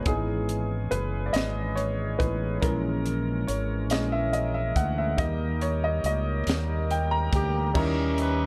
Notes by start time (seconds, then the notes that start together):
Already playing: G#3 G#4
0.04 G#1 E3 B3 C#4 D#4 G#4, kick, closed hi-hat
0.49 closed hi-hat
0.91 F#1 B4, closed hi-hat
1.26 D5
1.33 G#1 D#5, snare, closed hi-hat
1.76 C#5, closed hi-hat
2.18 A1 E3 B3 D#4 B4, kick, closed hi-hat
2.61 A#1 E3 G#3 C#4 A#4, kick, closed hi-hat
3.06 closed hi-hat
3.47 G#1 C#5, closed hi-hat
3.90 A#1 E3 G#3 C#4 D#5, snare, closed hi-hat
4.12 E5
4.33 D#5, closed hi-hat
4.54 E5
4.76 D2 F#5, kick, closed hi-hat
4.98 E5
5.17 D#2 G3 A#3 D#4 D#5, kick, closed hi-hat
5.61 C#5, closed hi-hat
5.84 D#5
6.04 C#2 D#5, closed hi-hat
6.47 D#2, snare, closed hi-hat
6.91 G5, closed hi-hat
7.11 A#5
7.33 D2 G4, kick, closed hi-hat
7.73 D#2 D#3 G3 C#4 D#4 E4 G4 D#5 E5 A#5 C#6, kick, crash
7.78 C#4 G4 A#4
8.18 B4, closed hi-hat